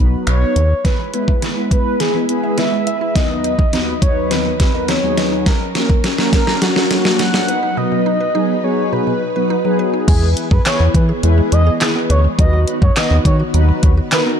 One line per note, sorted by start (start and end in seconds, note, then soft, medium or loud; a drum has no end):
0.00 0.16 B1 medium
0.00 0.57 F#3 loud
0.00 0.57 B3 medium
0.00 0.57 D#4 medium
0.00 0.57 B4 loud
0.27 0.45 B1 medium
0.27 0.86 C#5 loud
0.27 finger snap loud
0.27 closed hi-hat medium
0.56 0.74 D#2 loud
0.56 closed hi-hat medium
0.85 0.93 E3 medium
0.85 3.13 G#3 medium
0.85 3.13 E4 medium
0.85 1.43 B4 loud
0.85 5.42 B4 medium
0.85 kick loud
0.85 snare medium
0.85 closed hi-hat medium
0.99 1.08 E3 medium
1.13 1.43 G#3 medium
1.13 1.43 B3 medium
1.13 1.22 E4 medium
1.13 1.43 E4 medium
1.13 1.43 B4 medium
1.13 closed hi-hat medium
1.28 1.36 E5 medium
1.28 kick medium
1.42 1.51 E4 medium
1.42 snare medium
1.42 closed hi-hat medium
1.57 1.96 G#3 medium
1.57 1.96 B3 medium
1.57 1.96 E4 medium
1.57 1.96 B4 medium
1.71 2.02 B4 medium
1.71 kick medium
1.71 closed hi-hat medium
2.00 2.08 E3 medium
2.00 2.29 G#4 medium
2.00 snare medium
2.00 closed hi-hat medium
2.14 2.23 E3 medium
2.14 2.24 G#3 medium
2.14 2.24 B3 medium
2.14 2.24 E4 medium
2.14 2.25 B4 medium
2.29 2.88 G#3 medium
2.29 2.88 B3 medium
2.29 2.88 E4 medium
2.29 2.59 G#4 medium
2.29 2.88 B4 medium
2.29 closed hi-hat medium
2.44 2.52 E5 medium
2.58 2.66 E4 medium
2.58 3.17 E5 loud
2.58 snare medium
2.58 closed hi-hat medium
2.72 2.81 G#3 medium
2.87 2.95 E5 medium
2.87 closed hi-hat medium
3.01 3.09 E4 medium
3.15 3.55 D#2 medium
3.15 5.44 D#2 medium
3.15 3.24 D#3 medium
3.15 3.55 F#3 medium
3.15 10.04 F#3 medium
3.15 3.55 B3 medium
3.15 5.44 D#4 medium
3.15 3.55 D#4 medium
3.15 3.55 B4 medium
3.15 4.02 D#5 loud
3.15 kick loud
3.15 snare medium
3.15 closed hi-hat medium
3.30 3.38 D#3 medium
3.44 3.53 D#4 medium
3.44 closed hi-hat medium
3.59 3.67 D#5 medium
3.59 kick medium
3.73 3.93 D#2 medium
3.73 3.93 F#3 medium
3.73 3.93 B3 medium
3.73 3.93 D#4 medium
3.73 3.82 D#4 medium
3.73 3.93 B4 medium
3.73 snare medium
3.73 closed hi-hat medium
4.02 4.51 D#2 medium
4.02 4.51 F#3 medium
4.02 4.51 B3 medium
4.02 4.51 D#4 medium
4.02 4.51 B4 medium
4.02 4.33 C#5 medium
4.02 kick medium
4.02 closed hi-hat medium
4.31 4.39 D#3 medium
4.31 4.90 B4 medium
4.31 snare medium
4.31 closed hi-hat medium
4.46 4.54 D#3 medium
4.60 kick loud
4.60 snare medium
4.60 closed hi-hat medium
4.74 4.94 D#2 medium
4.74 4.94 F#3 medium
4.74 4.94 B3 medium
4.74 4.94 D#4 medium
4.74 4.94 A#4 medium
4.74 4.83 D#5 medium
4.88 4.97 D#4 medium
4.88 5.48 C#5 loud
4.88 snare medium
4.88 closed hi-hat medium
5.03 5.46 D#2 medium
5.03 5.46 F#3 medium
5.03 5.11 F#3 medium
5.03 5.46 B3 medium
5.03 5.46 D#4 medium
5.03 5.47 G#4 loud
5.18 5.26 D#5 medium
5.18 snare medium
5.18 closed hi-hat medium
5.32 5.40 D#4 medium
5.46 5.55 F#3 loud
5.46 7.46 C#4 medium
5.46 7.46 A#4 medium
5.46 6.04 A#4 medium
5.46 kick loud
5.46 snare medium
5.46 closed hi-hat medium
5.61 5.69 F#3 medium
5.75 6.05 F#3 medium
5.75 6.05 A#3 medium
5.75 6.05 C#4 medium
5.75 5.83 F#4 medium
5.75 6.05 A#4 medium
5.75 snare loud
5.75 closed hi-hat medium
5.90 5.98 A#4 medium
5.90 kick medium
6.04 6.12 F#4 medium
6.04 snare loud
6.04 closed hi-hat medium
6.18 6.58 F#3 medium
6.18 6.58 A#3 medium
6.18 6.58 C#4 medium
6.18 6.58 A#4 loud
6.18 snare loud
6.33 6.63 A#4 loud
6.33 kick loud
6.33 snare loud
6.33 closed hi-hat medium
6.47 snare loud
6.62 6.70 F#3 medium
6.62 6.90 F#4 medium
6.62 snare loud
6.62 closed hi-hat medium
6.76 6.86 F#3 medium
6.76 6.84 F#3 medium
6.76 6.86 A#3 medium
6.76 6.86 C#4 medium
6.76 6.86 A#4 medium
6.76 snare loud
6.90 7.47 F#3 medium
6.90 7.48 A#3 medium
6.90 7.48 C#4 medium
6.90 7.18 F#4 loud
6.90 7.48 F#4 medium
6.90 snare loud
6.90 closed hi-hat medium
7.05 7.13 A#4 medium
7.05 snare loud
7.19 7.28 F#4 medium
7.19 7.79 F#5 loud
7.19 snare loud
7.19 closed hi-hat loud
7.34 7.42 A#3 medium
7.34 snare loud
7.48 8.17 F#3 medium
7.48 8.18 B3 medium
7.48 10.05 D#4 medium
7.48 8.18 D#4 medium
7.48 7.57 B4 medium
7.48 10.05 B4 medium
7.48 8.18 B4 medium
7.48 closed hi-hat medium
7.63 7.71 D#4 medium
7.77 7.85 B2 loud
7.77 8.65 D#5 loud
7.92 8.00 B2 medium
8.06 8.14 D#4 medium
8.21 8.29 B4 medium
8.35 8.54 F#3 medium
8.35 8.54 B3 medium
8.35 8.43 D#4 loud
8.35 8.55 D#4 medium
8.35 8.55 G#4 medium
8.64 9.13 F#3 medium
8.64 9.13 B3 medium
8.64 9.13 D#4 medium
8.64 9.13 G#4 medium
8.64 8.94 C#5 loud
8.93 9.01 B2 medium
8.93 9.50 B4 medium
9.07 9.15 B2 medium
9.36 9.55 F#3 medium
9.36 9.55 B3 medium
9.36 9.56 D#4 medium
9.36 9.56 F#4 medium
9.36 9.44 B4 medium
9.50 9.59 D#4 medium
9.50 9.91 B4 medium
9.64 10.08 F#3 medium
9.64 9.73 F#3 medium
9.64 10.08 B3 medium
9.64 10.08 D#4 medium
9.64 10.07 G#4 loud
9.79 9.87 B4 medium
9.94 10.02 D#4 medium
10.08 10.35 E2 loud
10.08 12.36 E3 medium
10.08 10.16 G#3 loud
10.08 12.36 B3 medium
10.08 10.47 E4 medium
10.08 12.36 G#4 medium
10.08 10.28 G#4 loud
10.08 10.47 G#4 medium
10.08 10.47 B4 medium
10.08 kick loud
10.08 closed hi-hat medium
10.08 crash loud
10.22 10.31 G#3 medium
10.37 closed hi-hat medium
10.51 10.60 F#2 medium
10.51 10.59 G#4 medium
10.51 10.61 B4 medium
10.51 kick loud
10.65 11.05 E4 medium
10.65 11.05 G#4 medium
10.65 11.05 B4 medium
10.65 10.86 C#5 medium
10.65 snare medium
10.65 clap loud
10.65 closed hi-hat medium
10.80 10.89 E2 loud
10.80 10.88 B3 medium
10.94 11.12 E3 medium
10.94 11.04 B4 medium
10.94 kick loud
10.94 closed hi-hat medium
11.09 11.17 G#4 medium
11.23 11.41 E2 loud
11.23 11.32 G#3 medium
11.23 11.62 E4 medium
11.23 11.63 G#4 medium
11.23 11.63 B4 loud
11.23 closed hi-hat medium
11.38 11.46 G#3 medium
11.52 11.70 E2 loud
11.52 11.60 G#3 medium
11.52 11.72 D#5 medium
11.52 closed hi-hat medium
11.67 11.75 G#4 medium
11.81 12.20 E4 medium
11.81 11.89 E4 medium
11.81 12.20 G#4 medium
11.81 12.20 B4 medium
11.81 snare medium
11.81 clap loud
11.81 closed hi-hat loud
11.95 12.04 B3 medium
12.10 12.28 D2 loud
12.10 12.18 B4 medium
12.10 12.20 C#5 medium
12.10 closed hi-hat medium
12.24 12.33 G#3 medium
12.38 12.66 D#2 loud
12.38 14.40 D#3 medium
12.38 12.47 F#3 medium
12.38 14.40 B3 medium
12.38 12.78 D#4 medium
12.38 14.40 F#4 medium
12.38 12.78 F#4 medium
12.38 12.78 B4 medium
12.38 12.59 D#5 loud
12.38 kick loud
12.38 closed hi-hat medium
12.53 12.61 F#3 medium
12.68 closed hi-hat medium
12.82 12.91 F#2 loud
12.82 12.90 F#4 medium
12.82 12.92 C#5 medium
12.82 kick loud
12.96 13.36 D#4 medium
12.96 13.36 F#4 medium
12.96 13.36 B4 medium
12.96 13.16 D#5 medium
12.96 snare loud
12.96 clap loud
12.96 closed hi-hat loud
13.11 13.20 D#2 loud
13.11 13.19 B3 medium
13.25 13.43 D#3 loud
13.25 13.35 C#5 medium
13.25 kick loud
13.25 closed hi-hat medium
13.40 13.48 F#4 medium
13.54 13.72 D#2 loud
13.54 13.62 F#3 medium
13.54 13.93 D#4 medium
13.54 13.93 F#4 medium
13.54 13.93 B4 loud
13.54 closed hi-hat medium
13.69 13.77 F#3 medium
13.83 14.01 D#2 medium
13.83 13.91 F#3 medium
13.83 kick loud
13.83 closed hi-hat medium
13.97 14.06 F#4 medium
14.12 14.40 D#4 medium
14.12 14.20 D#4 medium
14.12 14.40 F#4 medium
14.12 14.40 A#4 medium
14.12 14.22 B4 medium
14.12 snare medium
14.12 clap loud
14.12 closed hi-hat loud
14.26 14.34 B3 medium